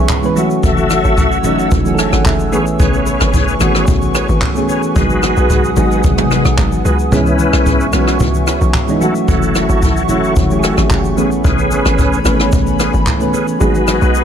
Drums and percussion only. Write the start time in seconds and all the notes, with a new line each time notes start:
0.09 kick, clap, low conga, shaker
0.23 high conga, shaker
0.37 high conga, shaker
0.50 shaker
0.63 kick, shaker
0.77 high conga, shaker
0.90 cross-stick, high conga, shaker
1.04 shaker
1.17 kick, shaker
1.32 shaker
1.44 high conga, low conga, shaker
1.59 shaker
1.71 kick, low conga, shaker
1.86 high conga, shaker
1.98 cross-stick, shaker
2.12 cross-stick, high conga, shaker
2.25 kick, clap, low conga, shaker
2.39 high conga, shaker
2.53 high conga, shaker
2.66 shaker
2.80 kick, shaker
2.94 high conga, shaker
3.06 high conga, shaker
3.20 cross-stick, shaker
3.34 kick, shaker
3.48 shaker
3.60 cross-stick, high conga, low conga, shaker
3.75 cross-stick, shaker
3.87 kick, low conga, shaker
4.02 high conga, shaker
4.14 cross-stick, shaker
4.28 high conga, shaker
4.41 kick, clap, low conga, shaker
4.56 high conga, shaker
4.69 high conga, shaker
4.83 shaker
4.96 kick, shaker
5.10 high conga, shaker
5.23 cross-stick, high conga, shaker
5.37 shaker
5.50 kick, shaker
5.64 shaker
5.76 high conga, low conga, shaker
5.91 shaker
6.03 kick, low conga, shaker
6.18 mid tom, high conga, shaker
6.31 cross-stick, shaker
6.45 cross-stick, high conga, shaker
6.58 kick, clap, low conga, shaker
6.72 high conga, shaker
6.85 high conga, shaker
6.99 shaker
7.12 kick, shaker
7.26 high conga, shaker
7.39 high conga, shaker
7.53 cross-stick, shaker
7.66 kick, shaker
7.80 shaker
7.93 cross-stick, high conga, low conga, shaker
8.07 cross-stick, shaker
8.20 kick, low conga, shaker
8.34 high conga, shaker
8.47 cross-stick, shaker
8.61 high conga, shaker
8.74 kick, clap, low conga, shaker
8.88 high conga, shaker
9.02 high conga, shaker
9.15 shaker
9.28 kick, shaker
9.42 high conga, shaker
9.55 cross-stick, high conga, shaker
9.69 shaker
9.82 kick, shaker
9.97 shaker
10.09 high conga, low conga, shaker
10.24 shaker
10.36 kick, low conga, shaker
10.51 high conga, shaker
10.63 cross-stick, shaker
10.77 cross-stick, high conga, shaker
10.90 kick, clap, low conga, shaker
11.04 high conga, shaker
11.18 high conga, shaker
11.31 shaker
11.44 kick, shaker
11.59 high conga, shaker
11.71 high conga, shaker
11.85 cross-stick, shaker
11.98 kick, shaker
12.13 shaker
12.25 cross-stick, high conga, low conga, shaker
12.40 cross-stick, shaker
12.52 kick, low conga, shaker
12.67 high conga, shaker
12.79 cross-stick, shaker
12.93 high conga, shaker
13.06 kick, clap, low conga, shaker
13.20 high conga, shaker
13.34 high conga, shaker
13.48 shaker
13.61 shaker
13.75 high conga, shaker
13.87 cross-stick, high conga, shaker
14.02 shaker
14.15 shaker